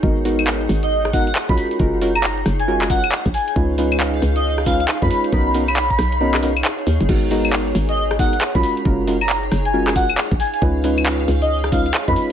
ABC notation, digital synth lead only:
X:1
M:4/4
L:1/16
Q:"Swing 16ths" 1/4=136
K:F#
V:1 name="Digital synth lead"
z6 z d z2 f f z b b z | z3 a z3 g z2 f z3 g g | z6 z d z2 e e z b b z | b b z b2 b4 z6 z |
z6 z d z2 f f z b b z | z3 a z3 g z2 f z3 g g | z6 z d z2 e e z b b z |]